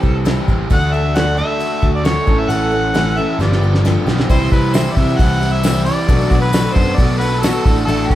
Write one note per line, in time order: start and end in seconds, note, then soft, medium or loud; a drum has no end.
0.00 0.38 C2 medium
0.00 0.24 C3 medium
0.00 0.25 E3 medium
0.00 0.25 G3 medium
0.00 0.25 C4 medium
0.00 0.25 C4 soft
0.00 0.24 G4 medium
0.00 0.25 G4 medium
0.00 0.45 A4 medium
0.00 kick medium
0.05 0.24 G3 soft
0.25 0.48 C3 medium
0.25 0.48 E3 medium
0.25 0.48 G3 medium
0.25 0.48 C4 medium
0.25 0.47 G4 medium
0.25 snare loud
0.25 open hi-hat medium
0.48 0.65 A1 medium
0.48 0.70 G3 soft
0.48 0.70 C4 medium
0.48 0.71 G4 medium
0.48 kick medium
0.70 1.40 D2 loud
0.70 0.93 D3 medium
0.70 0.93 A3 medium
0.70 0.93 D4 medium
0.70 2.27 D4 medium
0.70 2.27 F#4 medium
0.70 0.92 F#4 medium
0.70 2.25 A4 medium
0.70 2.27 D5 medium
0.70 0.95 F#5 loud
0.70 kick loud
0.70 open hi-hat medium
0.93 1.15 A3 soft
0.93 1.15 D4 soft
0.93 1.16 F#4 medium
0.93 1.18 E5 loud
1.15 1.38 D3 medium
1.15 1.38 A3 medium
1.15 1.37 D4 medium
1.15 1.36 F#4 medium
1.15 1.37 F#5 medium
1.15 snare loud
1.15 open hi-hat medium
1.37 2.02 D3 medium
1.37 1.59 A3 soft
1.37 1.60 D4 soft
1.37 1.60 F#4 medium
1.37 1.90 E5 loud
1.60 1.82 D3 medium
1.60 1.83 A3 medium
1.60 1.82 D4 medium
1.60 1.81 F#4 medium
1.60 open hi-hat soft
1.82 2.18 D2 medium
1.82 2.04 A3 soft
1.82 2.04 D4 soft
1.82 2.04 F#4 soft
1.82 kick medium
1.95 2.07 D5 medium
2.05 2.27 D3 medium
2.05 2.27 A3 medium
2.05 2.27 D4 medium
2.05 2.26 F#4 medium
2.05 2.41 C#5 medium
2.05 snare loud
2.05 open hi-hat medium
2.26 2.45 A1 medium
2.26 2.92 A2 medium
2.26 2.93 E3 medium
2.26 2.49 A3 soft
2.26 3.38 C#4 medium
2.26 2.49 C#4 soft
2.26 3.38 E4 medium
2.26 3.38 A4 medium
2.26 2.50 A4 medium
2.26 3.38 C#5 medium
2.26 kick loud
2.39 2.52 E5 medium
2.49 3.19 A1 medium
2.49 2.72 A2 medium
2.49 2.73 E3 medium
2.49 2.73 A3 medium
2.49 2.72 C#4 medium
2.49 2.70 A4 medium
2.49 3.20 F#5 loud
2.49 open hi-hat medium
2.72 2.94 A3 soft
2.72 2.94 C#4 soft
2.72 2.94 A4 medium
2.94 3.17 A2 medium
2.94 3.17 E3 medium
2.94 3.17 A3 medium
2.94 3.17 C#4 medium
2.94 3.16 A4 medium
2.94 snare loud
2.94 open hi-hat medium
3.17 3.40 A3 soft
3.17 3.40 C#4 soft
3.17 3.40 A4 soft
3.17 3.40 E5 medium
3.39 3.57 G1 loud
3.39 4.05 G2 medium
3.39 4.06 D3 medium
3.39 3.62 F3 medium
3.39 3.63 G3 medium
3.39 3.62 B3 medium
3.39 4.05 D4 medium
3.39 4.11 F4 medium
3.39 4.14 G4 medium
3.39 3.61 G4 medium
3.39 4.19 B4 medium
3.39 3.82 D5 medium
3.39 snare medium
3.52 snare medium
3.60 3.96 G1 medium
3.60 3.84 G3 soft
3.60 3.84 B3 soft
3.60 3.85 G4 soft
3.64 3.84 F3 soft
3.75 snare medium
3.85 4.07 G2 medium
3.85 4.07 D3 medium
3.85 4.07 F3 medium
3.85 4.07 G3 medium
3.85 4.06 B3 medium
3.85 4.05 G4 loud
3.85 snare medium
3.98 4.19 A3 medium
3.98 4.21 B3 medium
4.03 4.24 B1 medium
4.03 4.22 C4 medium
4.03 4.23 D4 medium
4.03 4.29 G4 medium
4.07 4.29 G2 medium
4.07 4.28 D3 medium
4.07 4.30 F3 soft
4.07 4.29 G3 medium
4.07 4.30 B3 medium
4.07 4.25 E4 medium
4.07 snare loud
4.12 4.26 F4 medium
4.12 4.28 G4 medium
4.17 4.29 A4 medium
4.17 4.30 B4 medium
4.17 snare medium
4.23 4.27 C5 medium
4.23 4.33 D5 medium
4.28 4.47 C2 loud
4.28 4.52 C3 medium
4.28 4.52 E3 medium
4.28 4.52 G3 medium
4.28 6.06 C4 medium
4.28 4.51 C4 loud
4.28 6.06 E4 medium
4.28 6.05 E4 medium
4.28 4.52 E4 medium
4.28 6.07 G4 medium
4.28 6.05 G4 medium
4.28 4.51 G4 medium
4.28 6.06 C5 medium
4.28 4.51 C5 medium
4.28 6.06 C5 medium
4.28 kick loud
4.28 open hi-hat medium
4.52 4.87 C2 medium
4.52 4.74 G3 soft
4.52 4.73 C4 medium
4.52 4.74 E4 soft
4.52 4.75 G4 medium
4.52 4.75 B4 medium
4.52 kick medium
4.52 open hi-hat medium
4.74 4.97 C3 medium
4.74 4.97 E3 medium
4.74 4.97 G3 medium
4.74 4.95 C4 medium
4.74 4.96 E4 medium
4.74 4.95 G4 medium
4.74 4.94 C5 medium
4.74 snare loud
4.74 open hi-hat medium
4.74 tambourine loud
4.92 5.19 C4 medium
4.92 4.98 D5 medium
4.92 5.19 E5 medium
4.96 5.14 C3 medium
4.96 5.42 C3 medium
4.96 5.16 E3 medium
4.96 5.18 G3 soft
4.96 5.18 E4 medium
4.96 5.19 G4 medium
4.96 kick medium
4.96 open hi-hat medium
5.18 5.89 C2 medium
5.18 5.41 E3 medium
5.18 5.42 G3 medium
5.18 5.40 C4 medium
5.18 5.41 E4 medium
5.18 5.40 G4 medium
5.18 5.53 F#5 medium
5.18 kick loud
5.18 open hi-hat medium
5.41 5.87 C3 medium
5.41 5.61 E3 medium
5.41 5.63 G3 soft
5.41 5.64 C4 medium
5.41 5.63 E4 soft
5.41 5.63 G4 medium
5.41 open hi-hat medium
5.52 5.84 E5 loud
5.63 5.86 C3 medium
5.63 5.86 E3 medium
5.63 5.86 G3 medium
5.63 5.85 C4 medium
5.63 5.85 E4 medium
5.63 5.84 G4 medium
5.63 snare loud
5.63 open hi-hat medium
5.63 tambourine loud
5.85 6.09 G3 soft
5.85 6.07 C4 medium
5.85 6.09 E4 soft
5.85 6.08 G4 soft
5.85 6.38 D5 medium
5.85 open hi-hat medium
6.08 6.26 B1 medium
6.08 6.31 B2 medium
6.08 6.31 F#3 medium
6.08 6.31 A3 medium
6.08 7.64 B3 medium
6.08 6.32 B3 medium
6.08 7.64 D4 medium
6.08 7.63 D4 medium
6.08 6.30 D4 medium
6.08 7.64 F#4 medium
6.08 6.29 F#4 medium
6.08 7.64 A4 medium
6.08 7.63 A4 medium
6.08 7.63 B4 medium
6.08 kick loud
6.08 open hi-hat medium
6.31 6.66 B1 loud
6.31 6.52 A3 soft
6.31 6.52 B3 medium
6.31 6.53 D4 medium
6.31 6.52 F#4 soft
6.31 kick medium
6.31 open hi-hat medium
6.41 6.74 B4 medium
6.52 6.75 B2 medium
6.52 6.76 F#3 medium
6.52 6.76 A3 medium
6.52 6.76 B3 medium
6.52 6.75 D4 medium
6.52 6.74 F#4 medium
6.52 snare loud
6.52 open hi-hat medium
6.52 tambourine loud
6.73 6.93 F#2 medium
6.73 6.98 A3 soft
6.73 6.98 B3 medium
6.73 6.98 D4 soft
6.73 6.98 F#4 medium
6.73 6.97 C5 medium
6.73 kick medium
6.73 open hi-hat medium
6.77 7.21 B2 medium
6.77 6.96 F#3 medium
6.96 7.50 B1 medium
6.96 7.21 F#3 medium
6.96 7.21 A3 medium
6.96 7.20 B3 medium
6.96 7.21 D4 medium
6.96 7.17 D5 medium
6.96 kick loud
6.96 open hi-hat medium
7.00 7.19 F#4 medium
7.17 7.43 F#4 soft
7.17 7.42 B4 medium
7.17 open hi-hat medium
7.21 7.65 B2 medium
7.21 7.41 F#3 medium
7.21 7.43 A3 soft
7.21 7.42 B3 medium
7.21 7.43 D4 soft
7.40 7.66 B2 medium
7.40 7.66 F#3 medium
7.40 7.66 A3 medium
7.40 7.64 B3 medium
7.40 7.65 D4 medium
7.40 7.64 F#4 loud
7.40 7.75 A4 medium
7.40 snare loud
7.40 open hi-hat medium
7.40 tambourine medium
7.65 7.83 A1 loud
7.65 7.85 A2 medium
7.65 7.86 D3 medium
7.65 8.15 A3 medium
7.65 7.88 A3 soft
7.65 8.15 D4 medium
7.65 7.88 D4 soft
7.65 8.15 F#4 medium
7.65 7.88 F#4 medium
7.65 8.15 F#4 medium
7.65 8.15 A4 medium
7.65 kick loud
7.65 open hi-hat medium
7.85 8.05 A1 loud
7.85 8.11 A2 medium
7.85 8.11 D3 medium
7.85 8.08 A4 loud
7.85 open hi-hat medium
7.89 8.11 A3 medium
7.89 8.11 D4 medium
7.89 8.10 F#4 medium
8.07 8.15 A1 medium
8.07 8.15 D4 medium
8.07 8.15 G4 medium
8.07 kick medium
8.07 open hi-hat medium
8.11 8.15 F#4 medium